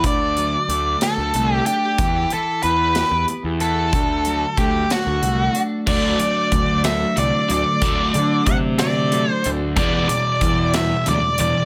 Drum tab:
CC |------|------|------|x-----|
HH |xxxxxx|xxxxxx|xxxxxx|-xxxxx|
SD |---o--|---o--|---o--|---o--|
BD |o-----|o-----|o-o---|o-o---|

CC |------|------|
HH |xxxxxx|xxxxxx|
SD |---o--|---o--|
BD |o-o---|o-o---|